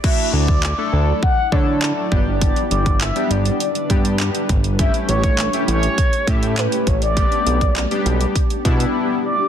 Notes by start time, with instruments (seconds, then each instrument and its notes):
0.04 ambient pad F#3 D4 E4, analog polysynth A3 D4 E4 F#4, soft synth lead E5, kick, crash
0.33 analog synth bass D2, soft synth lead D5
0.48 kick
0.63 clap
0.78 analog polysynth A3 D4 E4 A4
0.93 analog synth bass D2, soft synth lead D5
1.23 soft synth lead F#5, kick
1.52 analog synth bass D3, analog polysynth A3 D4 E4 A4, soft synth lead C#5, kick
1.82 soft synth lead D5, clap
2.11 analog synth bass G1, analog polysynth G3 B3 D4 G4, ambient pad G3 B4, kick
2.41 soft synth lead D5, kick, closed hi-hat
2.56 closed hi-hat
2.71 analog synth bass G1, soft synth lead D5, closed hi-hat
2.86 kick, closed hi-hat
3.01 soft synth lead E5, clap, closed hi-hat
3.15 analog polysynth G3 B3 D4 G4, closed hi-hat
3.30 analog synth bass G1, soft synth lead D5, closed hi-hat
3.45 closed hi-hat
3.60 soft synth lead D5, closed hi-hat
3.75 closed hi-hat
3.90 analog synth bass G2, analog polysynth G3 B3 D4 G4, kick, closed hi-hat
4.05 closed hi-hat
4.19 clap, closed hi-hat
4.35 closed hi-hat
4.49 analog synth bass G1, kick, closed hi-hat
4.64 closed hi-hat
4.79 ambient pad A3 C#4 G4, analog polysynth A3 C#4 E4 G4, soft synth lead E5, kick, closed hi-hat
4.94 closed hi-hat
5.09 analog synth bass A1, soft synth lead C#5, closed hi-hat
5.24 kick, closed hi-hat
5.39 clap, closed hi-hat
5.53 analog polysynth A3 C#4 E4 G4, closed hi-hat
5.68 analog synth bass A1, soft synth lead C#5, closed hi-hat
5.83 closed hi-hat
5.98 kick, closed hi-hat
6.13 closed hi-hat
6.27 analog synth bass A2, analog polysynth A3 C#4 E4 G4, soft synth lead E5, kick, closed hi-hat
6.43 closed hi-hat
6.57 soft synth lead B4, clap, closed hi-hat
6.72 closed hi-hat
6.87 analog synth bass A1, soft synth lead C#5, kick, closed hi-hat
7.02 soft synth lead D5, closed hi-hat
7.16 analog polysynth G3 B3 D4 G4, ambient pad B3 D4, kick, closed hi-hat
7.32 closed hi-hat
7.46 analog synth bass B1, closed hi-hat
7.61 kick, closed hi-hat
7.76 clap, closed hi-hat
7.91 analog polysynth G3 B3 D4 G4, closed hi-hat
8.06 analog synth bass B1, closed hi-hat
8.21 closed hi-hat
8.36 kick, closed hi-hat
8.50 closed hi-hat
8.65 analog synth bass B2, analog polysynth G3 B3 D4 E4, kick, closed hi-hat
8.80 closed hi-hat
9.25 soft synth lead D5